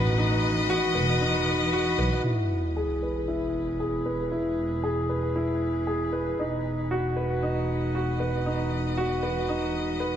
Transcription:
Already playing: double bass section A1, string quartet E3 B4 D#5, upright piano D#4 F#4 B4
0.18 upright piano D#4
0.70 upright piano F#4
0.94 double bass section E1, upright piano B4
1.21 upright piano D#4
1.73 upright piano F#4
1.98 double bass section B1, upright piano B4
2.24 double bass section E1, upright piano E4, sub drop
2.49 string quartet G#4
2.76 upright piano G#4
3.03 upright piano B4
3.28 upright piano E4
3.80 upright piano G#4
4.06 upright piano B4
4.32 upright piano E4
4.84 upright piano G#4
5.09 upright piano B4
5.36 upright piano E4
5.87 upright piano G#4
6.13 upright piano B4
6.38 double bass section E1, string quartet E3, upright piano D#4
6.91 upright piano F#4
7.17 upright piano B4
7.37 string quartet D#5
7.43 upright piano D#4
7.95 upright piano F#4
8.20 upright piano B4
8.46 upright piano D#4
8.97 upright piano F#4
9.23 upright piano B4
9.49 upright piano D#4
10.00 upright piano B4

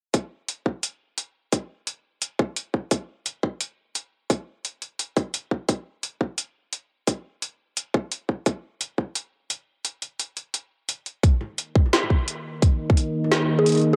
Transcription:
0.14 kick, closed hi-hat
0.48 closed hi-hat
0.66 kick
0.83 closed hi-hat
1.18 closed hi-hat
1.52 kick, closed hi-hat
1.87 closed hi-hat
2.22 closed hi-hat
2.39 kick
2.56 closed hi-hat
2.74 kick
2.91 kick, closed hi-hat
3.26 closed hi-hat
3.43 kick
3.61 closed hi-hat
3.95 closed hi-hat
4.30 kick, closed hi-hat
4.65 closed hi-hat
4.82 closed hi-hat
4.99 closed hi-hat
5.17 kick, closed hi-hat
5.34 closed hi-hat
5.51 kick
5.69 kick, closed hi-hat
6.03 closed hi-hat
6.21 kick
6.38 closed hi-hat
6.73 closed hi-hat
7.07 kick, closed hi-hat
7.42 closed hi-hat
7.77 closed hi-hat
7.94 kick
8.11 closed hi-hat
8.29 kick
8.46 kick, closed hi-hat
8.81 closed hi-hat
8.98 kick
9.15 closed hi-hat
9.50 closed hi-hat
9.85 closed hi-hat
10.02 closed hi-hat
10.20 closed hi-hat
10.37 closed hi-hat
10.54 closed hi-hat
10.89 closed hi-hat
11.06 closed hi-hat
11.23 analog synth pad D#4 A#4 D#5, kick, closed hi-hat
11.41 mid tom
11.58 closed hi-hat
11.76 kick
11.86 mid tom
11.93 snare, closed hi-hat
12.03 mid tom
12.10 kick
12.28 closed hi-hat
12.62 kick, closed hi-hat
12.90 kick
12.97 closed hi-hat
13.24 mid tom
13.32 snare, closed hi-hat
13.42 mid tom
13.59 synth pluck G#4
13.66 closed hi-hat
13.69 closed hi-hat
13.72 closed hi-hat
13.75 closed hi-hat, mid tom
13.77 closed hi-hat
13.79 closed hi-hat
13.81 closed hi-hat

